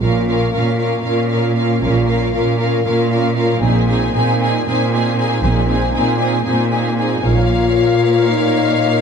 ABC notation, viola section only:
X:1
M:7/8
L:1/8
Q:1/4=116
K:Bbm
V:1 name="Viola section"
[DF] [DF] [DF] [DF] [DF] [DF] [DF] | [DF] [DF] [DF] [DF] [DF] [DF] [DF] | [CE] [CE] [CE] [CE] [CE] [CE] [CE] | [CE] [CE] [CE] [CE] [CE] [CE] [CE] |
B6- B |]